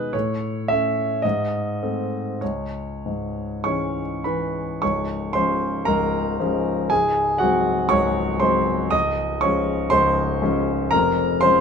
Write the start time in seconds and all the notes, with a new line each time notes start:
Already playing: B2 D#3 G#3 D#4 G#4 B4 D#5
0.13 A2 C#5
0.68 A3 C#4 E5
1.22 G#2 D#5
1.82 A3 C4
2.41 C#2 C#5
3.06 G#2
3.64 E3 G#3 C#4 C#5 C#6
4.24 E3 B4 B5
4.82 C#1 C#2 C#5 C#6
5.33 F3 G#3 C#4 C5 C6
5.85 C#1 C#2 A#4 A#5
6.40 F3 G#3 C#4
6.90 C#1 C#2 G#4 G#5
7.38 F#3 G#3 C4 F#4 F#5
7.89 C#1 C#2 C#5 C#6
8.40 F#3 G#3 C4 C5 C6
8.91 C#1 C#2 D#5 D#6
9.41 F3 G#3 C#4 C#5 C#6
9.90 C#1 C#2 C5 C6
10.42 F3 G#3 C#4
10.91 F1 F2 A#4 A#5
11.41 F3 G#3 C#4 C5 C6